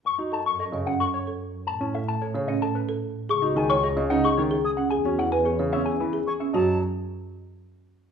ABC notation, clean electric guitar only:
X:1
M:3/4
L:1/16
Q:1/4=111
K:F#dor
V:1 name="Clean electric guitar"
c' z a c' d z f c' c z3 | a z e a c z d a B z3 | c' z g c' d z f c' c z G f | g z f g c z e g B z G e |
d2 z8 z2 |]